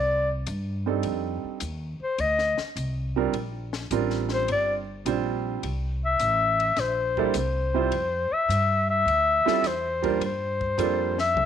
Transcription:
0.00 0.45 C2 medium
0.00 0.30 D5 medium
0.47 1.02 G2 medium
0.47 hi-hat pedal medium
0.47 ride medium
0.86 1.58 G3 medium
0.86 1.58 C4 medium
0.86 1.58 D4 medium
0.86 1.58 D#4 medium
0.86 1.58 A4 medium
1.03 1.41 F2 medium
1.03 ride medium
1.44 muted upright bass stroke soft
1.60 1.98 D#2 medium
1.60 hi-hat pedal medium
1.60 ride medium
2.00 2.22 C5 medium
2.00 muted upright bass stroke soft
2.18 2.55 D2 medium
2.18 2.59 D#5 medium
2.18 ride medium
2.39 snare soft
2.58 muted upright bass stroke soft
2.58 snare soft
2.76 3.32 C2 medium
2.76 hi-hat pedal medium
2.76 ride medium
3.16 3.32 G3 medium
3.16 3.32 C4 medium
3.16 3.32 D4 medium
3.16 3.33 F4 medium
3.16 3.33 A#4 medium
3.33 3.89 A#1 medium
3.33 ride medium
3.73 snare medium
3.91 4.47 A1 medium
3.91 4.80 G3 medium
3.91 4.81 C4 medium
3.91 4.81 D4 medium
3.91 4.81 F4 medium
3.91 4.81 A#4 medium
3.91 hi-hat pedal medium
3.91 ride medium
4.10 snare soft
4.29 snare soft
4.34 4.49 C5 medium
4.48 5.04 G1 medium
4.48 ride medium
4.52 4.75 D5 medium
5.05 5.61 A#1 medium
5.05 5.64 G3 medium
5.05 5.64 C4 medium
5.05 5.64 D4 medium
5.05 5.64 F4 medium
5.05 5.64 C5 medium
5.05 hi-hat pedal soft
5.05 ride medium
5.63 6.19 C2 medium
5.63 ride medium
6.05 6.81 E5 medium
6.19 6.76 A1 medium
6.19 hi-hat pedal soft
6.19 ride medium
6.60 ride soft
6.77 7.33 A#1 medium
6.77 7.36 C5 medium
6.77 snare soft
6.77 ride medium
7.17 7.34 G3 medium
7.17 7.34 A#3 medium
7.17 7.34 D4 medium
7.17 7.34 E4 medium
7.17 7.34 A4 medium
7.17 kick medium
7.34 7.91 C2 medium
7.34 hi-hat pedal medium
7.34 ride medium
7.38 8.34 C5 medium
7.74 7.91 G3 medium
7.74 7.91 C4 medium
7.74 7.91 E4 medium
7.74 7.91 F4 medium
7.74 7.92 C5 medium
7.92 8.29 F2 medium
7.92 ride medium
8.32 8.89 E5 medium
8.32 muted upright bass stroke soft
8.49 9.05 G2 medium
8.49 hi-hat pedal medium
8.49 ride medium
8.90 9.68 E5 medium
9.05 9.43 D2 medium
9.05 ride medium
9.45 9.62 G3 medium
9.45 9.62 C4 medium
9.45 9.62 E4 medium
9.45 9.63 F4 medium
9.45 9.63 A4 medium
9.45 muted upright bass stroke soft
9.45 snare medium
9.62 10.19 E2 medium
9.62 snare soft
9.62 hi-hat pedal medium
9.62 ride medium
9.67 10.23 C5 medium
10.02 10.19 G3 medium
10.02 10.19 A#3 medium
10.02 10.20 D4 medium
10.02 10.20 F4 medium
10.02 10.20 A#4 medium
10.02 kick medium
10.02 ride soft
10.20 10.76 G2 medium
10.20 ride medium
10.26 11.16 C5 medium
10.61 kick medium
10.78 11.34 F2 medium
10.78 11.14 G3 medium
10.78 11.14 A#3 medium
10.78 11.14 D4 medium
10.78 11.15 F4 medium
10.78 11.15 A4 medium
10.78 hi-hat pedal medium
10.78 ride medium
11.19 11.46 E5 medium
11.19 snare soft
11.34 11.46 C2 medium
11.34 mid tom medium

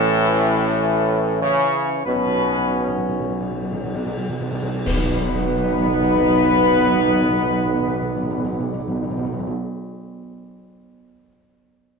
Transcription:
0.00 1.69 A1 loud
0.00 1.38 A2 loud
0.00 2.02 E3 loud
0.00 2.02 C#4 loud
0.00 1.37 A4 loud
1.41 2.02 C#3 loud
1.41 2.02 C#5 loud
2.05 4.35 B1 medium
2.05 3.37 B2 loud
2.05 2.15 B2 soft
2.05 4.39 B3 loud
2.05 4.35 C#4 loud
2.05 3.37 B4 loud
2.16 2.25 B2 soft
2.26 2.35 B2 soft
2.36 2.45 B2 medium
2.47 2.56 B2 medium
2.57 2.66 B2 medium
2.68 2.77 B2 medium
2.78 2.87 B2 medium
2.88 2.97 B2 medium
2.98 3.08 B2 medium
3.09 3.19 B2 medium
3.20 3.29 B2 medium
3.30 3.40 B2 medium
3.41 3.50 B2 medium
3.51 3.61 B2 medium
3.62 3.71 B2 medium
3.72 3.83 B2 loud
3.84 3.93 B2 loud
3.95 4.05 B2 loud
4.06 4.16 B2 loud
4.17 4.28 B2 loud
4.29 4.39 B2 loud
4.40 4.50 B2 loud
4.51 4.61 B2 loud
4.62 4.72 B2 loud
4.73 4.83 B2 loud
4.86 9.56 B1 loud
4.86 4.94 B2 loud
4.86 9.55 B3 loud
4.86 9.55 D#4 loud
4.86 9.55 B4 loud
4.86 concert bass drum medium
4.86 crash medium
4.94 5.00 B2 medium
5.00 5.07 B2 loud
5.07 5.14 B2 loud
5.14 5.21 B2 loud
5.21 5.28 B2 medium
5.28 5.35 B2 loud
5.35 5.42 B2 medium
5.42 5.50 B2 loud
5.50 5.57 B2 medium
5.57 5.64 B2 loud
5.64 5.71 B2 medium
5.72 5.79 B2 loud
5.79 5.86 B2 medium
5.86 5.93 B2 loud
5.93 6.00 B2 medium
6.00 6.07 B2 loud
6.08 6.15 B2 medium
6.15 6.22 B2 medium
6.22 6.29 B2 loud
6.29 6.36 B2 loud
6.36 6.43 B2 medium
6.44 6.51 B2 loud
6.51 6.58 B2 medium
6.58 6.65 B2 loud
6.66 6.73 B2 medium
6.73 6.79 B2 loud
6.79 6.86 B2 medium
6.86 6.94 B2 loud
6.94 7.01 B2 medium
7.01 7.08 B2 medium
7.08 7.15 B2 medium
7.15 7.22 B2 loud
7.22 7.29 B2 medium
7.29 7.36 B2 loud
7.36 7.43 B2 loud
7.43 7.50 B2 medium
7.51 7.58 B2 loud
7.58 7.65 B2 medium
7.65 7.72 B2 medium
7.73 7.80 B2 loud
7.80 7.87 B2 medium
7.87 7.94 B2 loud
7.94 8.01 B2 medium
8.01 8.08 B2 loud
8.09 8.16 B2 medium
8.16 8.23 B2 medium
8.23 8.30 B2 loud
8.31 8.38 B2 loud
8.38 8.45 B2 medium
8.45 8.52 B2 loud
8.53 8.60 B2 medium
8.60 8.66 B2 loud
8.66 8.73 B2 medium
8.73 8.80 B2 loud
8.80 8.87 B2 medium
8.88 8.95 B2 loud
8.95 9.02 B2 medium
9.03 9.10 B2 loud
9.10 9.17 B2 medium
9.17 9.24 B2 loud
9.25 9.32 B2 loud
9.32 9.39 B2 loud
9.39 9.46 B2 loud
9.47 9.54 B2 medium

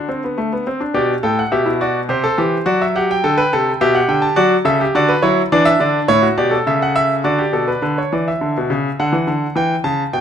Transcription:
0.00 0.62 D3 medium
0.00 0.62 F#5 medium
0.09 0.22 C4 medium
0.24 0.37 B3 medium
0.38 0.51 A3 medium
0.53 0.66 B3 medium
0.67 0.80 C4 medium
0.81 0.95 D4 soft
0.94 1.12 B2 medium
0.94 1.13 G4 medium
0.94 1.13 D5 medium
1.23 1.41 A2 medium
1.23 1.41 A4 medium
1.23 1.38 G5 medium
1.39 1.52 F#5 medium
1.52 2.08 B2 medium
1.52 1.66 G4 medium
1.52 1.70 E5 medium
1.66 1.80 E4 medium
1.81 1.99 F#4 medium
1.81 1.99 D5 medium
2.09 2.27 C3 medium
2.09 2.23 G4 medium
2.09 2.65 C5 medium
2.24 2.38 A4 medium
2.38 2.56 E3 medium
2.38 2.56 G4 medium
2.66 3.22 F#3 medium
2.66 2.84 F#4 medium
2.66 2.80 D5 medium
2.82 2.95 E5 medium
2.96 3.13 G4 medium
2.96 3.09 F#5 medium
3.11 3.79 G5 medium
3.24 3.42 D3 medium
3.24 3.38 A4 medium
3.38 3.52 B4 medium
3.53 3.71 C3 medium
3.53 3.71 A4 medium
3.81 3.99 B2 medium
3.81 4.36 G4 loud
3.81 3.95 E5 medium
3.95 4.09 F#5 medium
4.08 4.26 D3 medium
4.08 4.23 G5 medium
4.22 4.37 A5 medium
4.36 4.55 F#3 medium
4.36 4.55 F#4 medium
4.36 4.55 D5 medium
4.65 4.83 C#3 medium
4.65 4.80 A4 medium
4.65 4.84 E5 medium
4.81 4.95 G4 medium
4.95 5.13 D3 medium
4.95 5.13 F#4 medium
4.95 5.09 D5 medium
5.09 5.23 B4 medium
5.22 5.41 F#3 medium
5.22 5.41 E4 medium
5.22 5.41 C#5 medium
5.52 5.70 E3 medium
5.52 6.08 D4 medium
5.52 5.66 D5 medium
5.65 5.80 E5 loud
5.80 5.98 D3 medium
5.80 5.98 D5 medium
6.08 6.26 A2 medium
6.08 6.23 E4 medium
6.08 6.27 C#5 loud
6.22 6.37 F#4 medium
6.38 6.56 B2 medium
6.38 6.52 G4 medium
6.38 6.56 D5 medium
6.51 7.22 A4 medium
6.67 7.23 C#3 medium
6.67 6.81 E5 medium
6.82 6.96 F#5 medium
6.96 7.14 E5 medium
7.24 7.43 D3 medium
7.24 7.38 F#4 medium
7.24 7.81 D5 medium
7.39 7.53 G4 medium
7.53 7.71 B2 medium
7.53 7.68 A4 medium
7.68 7.81 B4 medium
7.82 8.01 D3 medium
7.82 7.97 B4 medium
7.98 8.12 C#5 medium
8.13 8.30 E3 medium
8.13 8.27 D5 medium
8.28 8.97 E5 medium
8.41 8.55 D3 medium
8.57 8.71 B2 medium
8.70 8.88 C#3 medium
8.99 9.13 D3 medium
8.99 9.55 F#5 medium
9.12 9.27 E3 medium
9.27 9.45 D3 medium
9.56 9.74 E3 medium
9.56 9.74 G5 medium
9.84 10.02 C#3 medium
9.84 10.02 A5 medium
10.13 10.21 B2 medium
10.13 10.21 G5 medium

